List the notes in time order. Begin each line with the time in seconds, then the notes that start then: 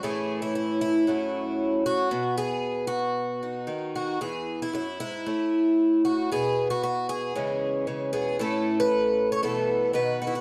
0.03 A2 E3 A3 C#4 G#4
0.42 E4
0.55 E4
0.81 E4
1.07 F#2 F#3 A3 C#4
1.86 F#4
2.11 B2
2.38 G#4
2.87 F#4
3.43 D#4
3.67 D#3
3.96 F#4
4.21 E2 G#4
4.62 E4
4.73 F#2 E4
5.00 G#2 E4
5.26 A2
6.05 F#4
6.31 B2 G#4
6.70 F#4
6.83 F#4
7.09 G#4
7.35 C#3 E3 G#3 C#4
7.87 C#3
8.13 B2 G#4
8.39 A2 A3 C#4 E4 A4
8.80 B4
9.32 C#5
9.43 B2 E3 A3 B3 A4
9.93 B2 D#3 F#4 B4
10.22 F#4
10.27 E4
10.35 F#4